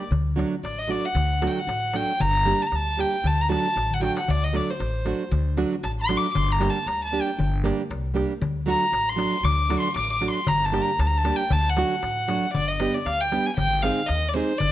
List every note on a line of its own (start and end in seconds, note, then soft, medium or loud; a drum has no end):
0.00 darbuka tek soft
0.11 0.42 D2 medium
0.11 darbuka dum medium
0.28 darbuka tek soft
0.36 0.54 F#3 medium
0.36 0.54 A3 medium
0.36 0.55 D4 medium
0.36 0.55 F#4 medium
0.36 darbuka tek medium
0.53 darbuka tek soft
0.63 0.95 A1 medium
0.63 0.80 D5 medium
0.63 darbuka tek medium
0.79 0.92 D#5 medium
0.87 1.06 F#3 medium
0.87 1.06 A3 medium
0.87 1.07 D4 medium
0.87 1.07 F#4 medium
0.87 1.07 D5 medium
1.05 1.49 F#5 medium
1.05 darbuka tek soft
1.15 1.46 D2 loud
1.15 darbuka dum medium
1.31 darbuka tek soft
1.42 1.59 F#3 medium
1.42 1.59 A3 medium
1.42 1.59 D4 medium
1.42 1.60 F#4 medium
1.42 darbuka tek medium
1.49 1.61 G5 medium
1.57 1.98 F#5 medium
1.57 darbuka tek soft
1.67 1.99 A1 medium
1.67 darbuka tek medium
1.83 darbuka tek soft
1.93 2.11 F#3 medium
1.93 2.11 A3 medium
1.93 2.12 D4 medium
1.93 2.12 F#4 medium
1.93 2.23 G5 loud
1.93 darbuka tek medium
2.09 darbuka tek soft
2.20 2.51 G1 loud
2.20 2.63 A#5 loud
2.20 darbuka dum medium
2.35 darbuka tek soft
2.46 2.63 G3 medium
2.46 2.63 A#3 medium
2.46 2.64 D4 medium
2.46 2.64 G4 medium
2.46 darbuka tek medium
2.60 2.69 A5 loud
2.60 darbuka tek soft
2.67 2.77 A#5 medium
2.72 3.03 D2 medium
2.72 darbuka tek medium
2.76 3.02 A5 loud
2.87 darbuka tek soft
2.97 3.15 G3 medium
2.97 3.15 A#3 soft
2.97 3.15 D4 soft
2.97 3.16 G4 medium
2.97 3.29 G5 medium
2.97 darbuka tek medium
3.14 darbuka tek soft
3.24 3.55 D2 loud
3.24 3.43 A5 loud
3.24 darbuka dum medium
3.40 3.51 A#5 medium
3.40 darbuka tek soft
3.49 3.66 F#3 medium
3.49 3.67 A3 medium
3.49 3.67 D4 medium
3.49 3.67 F#4 medium
3.49 3.95 A5 loud
3.49 darbuka tek medium
3.66 darbuka tek soft
3.76 4.07 A1 medium
3.76 darbuka tek medium
3.91 4.03 F#5 medium
3.91 darbuka dum medium
4.00 4.18 F#3 medium
4.00 4.19 A3 soft
4.00 4.19 D4 medium
4.00 4.19 F#4 medium
4.00 4.16 G5 medium
4.00 darbuka tek medium
4.17 4.32 F#5 medium
4.17 darbuka tek medium
4.28 4.59 D2 loud
4.28 4.46 D5 loud
4.28 darbuka dum medium
4.44 4.57 D#5 medium
4.44 darbuka tek soft
4.53 4.70 F#3 medium
4.53 4.71 A3 medium
4.53 4.71 D4 medium
4.53 4.71 F#4 medium
4.53 4.72 D5 medium
4.53 darbuka tek medium
4.70 5.47 C5 medium
4.80 5.11 A1 medium
4.80 darbuka tek medium
5.05 5.22 F#3 medium
5.05 5.23 A3 medium
5.05 5.23 D4 medium
5.05 5.24 F#4 medium
5.05 darbuka tek medium
5.31 5.63 D2 loud
5.31 darbuka dum medium
5.47 darbuka tek soft
5.57 5.74 F#3 medium
5.57 5.75 A3 medium
5.57 5.75 D4 medium
5.57 5.75 F#4 medium
5.57 darbuka tek medium
5.72 darbuka tek soft
5.83 6.14 A1 medium
5.83 5.91 A5 medium
5.83 darbuka tek medium
5.98 6.19 C6 loud
5.98 darbuka tek soft
6.09 6.26 F#3 medium
6.09 6.27 A3 medium
6.09 6.27 D4 medium
6.09 6.27 F#4 medium
6.09 darbuka tek medium
6.17 6.32 D6 loud
6.24 darbuka tek soft
6.32 6.66 G1 loud
6.32 6.54 C6 loud
6.32 6.37 D6 medium
6.32 darbuka dum medium
6.52 6.71 A#5 medium
6.60 6.78 G3 medium
6.60 6.78 A#3 medium
6.60 6.78 D4 medium
6.60 6.78 G4 medium
6.60 darbuka tek medium
6.70 6.89 A5 medium
6.76 darbuka tek soft
6.86 7.18 D2 medium
6.86 7.04 A#5 medium
6.86 darbuka tek medium
7.02 7.23 A5 medium
7.02 darbuka tek soft
7.12 7.29 G3 medium
7.12 7.30 A#3 medium
7.12 7.30 D4 medium
7.12 7.30 G4 medium
7.22 7.47 G5 medium
7.28 darbuka tek soft
7.39 7.70 G1 loud
7.39 darbuka dum medium
7.54 darbuka tek soft
7.63 7.81 G3 medium
7.63 7.81 A#3 medium
7.63 7.82 D4 medium
7.63 7.82 G4 loud
7.63 darbuka tek medium
7.80 darbuka tek soft
7.90 8.21 C2 medium
7.90 darbuka tek medium
8.05 darbuka tek soft
8.14 8.32 G3 medium
8.14 8.32 A#3 medium
8.14 8.33 D4 medium
8.14 8.33 G4 medium
8.14 darbuka tek medium
8.31 darbuka tek soft
8.42 8.73 D2 loud
8.42 darbuka dum medium
8.56 darbuka tek soft
8.66 8.84 F#3 medium
8.66 8.84 A3 medium
8.66 8.85 D4 medium
8.66 8.85 F#4 medium
8.66 9.11 A#5 loud
8.92 9.24 A1 medium
8.92 darbuka tek medium
9.08 9.46 C6 loud
9.08 darbuka tek soft
9.16 9.35 F#3 medium
9.16 9.35 A3 medium
9.16 9.36 D4 medium
9.16 9.36 F#4 medium
9.16 darbuka tek medium
9.33 darbuka tek soft
9.43 9.75 D2 loud
9.43 9.79 D6 loud
9.43 darbuka dum loud
9.59 darbuka tek soft
9.69 9.87 F#3 medium
9.69 9.87 A3 medium
9.69 9.88 D4 medium
9.69 9.88 F#4 medium
9.69 darbuka tek medium
9.80 9.96 C6 loud
9.85 darbuka tek soft
9.96 10.27 A1 medium
9.96 10.12 D6 loud
9.96 darbuka tek medium
10.13 10.29 D6 loud
10.21 10.39 F#3 medium
10.21 10.39 A3 soft
10.21 10.39 D4 medium
10.21 10.39 F#4 medium
10.21 darbuka tek medium
10.31 10.50 C6 loud
10.36 darbuka tek soft
10.47 10.78 G1 loud
10.47 10.66 A#5 loud
10.47 darbuka dum loud
10.62 10.83 A5 medium
10.62 darbuka tek soft
10.72 10.90 G3 medium
10.72 10.90 A#3 medium
10.72 10.91 D4 medium
10.72 10.91 G4 medium
10.72 darbuka tek medium
10.82 11.02 A#5 medium
10.99 11.30 D2 loud
10.99 11.09 A5 medium
10.99 darbuka tek medium
11.07 11.19 A#5 medium
11.14 11.38 A5 loud
11.14 darbuka tek soft
11.24 11.42 G3 medium
11.24 11.42 A#3 medium
11.24 11.42 D4 medium
11.24 11.43 G4 medium
11.24 darbuka tek medium
11.36 11.54 G5 medium
11.50 11.82 D2 loud
11.50 11.71 A5 loud
11.50 darbuka dum loud
11.70 12.53 F#5 medium
11.76 11.94 F#3 medium
11.76 11.94 A3 medium
11.76 11.94 D4 medium
11.76 11.95 F#4 medium
11.76 darbuka tek medium
11.91 darbuka tek soft
12.03 12.34 A1 medium
12.03 darbuka tek medium
12.17 darbuka tek soft
12.28 12.45 F#3 medium
12.28 12.46 A3 medium
12.28 12.46 D4 medium
12.28 12.46 F#4 medium
12.28 darbuka tek medium
12.44 darbuka tek soft
12.54 12.85 G1 loud
12.54 12.70 D5 loud
12.54 darbuka dum medium
12.68 12.96 D#5 medium
12.80 12.97 G3 medium
12.80 12.97 B3 medium
12.80 12.98 D4 medium
12.80 12.98 G4 medium
12.80 darbuka tek medium
12.94 13.08 D5 medium
12.94 darbuka tek soft
13.05 13.36 D2 medium
13.05 13.22 F5 loud
13.05 darbuka tek medium
13.21 13.47 G5 loud
13.32 13.49 G3 medium
13.32 13.49 B3 medium
13.32 13.49 D4 soft
13.32 13.50 G4 medium
13.32 darbuka tek medium
13.46 13.56 G#5 medium
13.57 13.88 G#1 loud
13.57 13.84 G5 loud
13.57 darbuka dum loud
13.83 14.00 G#3 medium
13.83 14.00 C4 medium
13.83 14.01 D#4 medium
13.83 14.01 G#4 medium
13.83 14.08 F5 loud
13.83 darbuka tek medium
13.98 darbuka tek soft
14.07 14.40 D#2 medium
14.07 14.30 D#5 loud
14.07 darbuka tek medium
14.29 14.35 D5 medium
14.34 14.51 G#3 medium
14.34 14.52 C4 medium
14.34 14.52 D#4 medium
14.34 14.52 G#4 medium
14.34 14.60 C5 medium
14.58 14.72 G1 loud
14.58 14.72 D5 loud
14.58 darbuka dum medium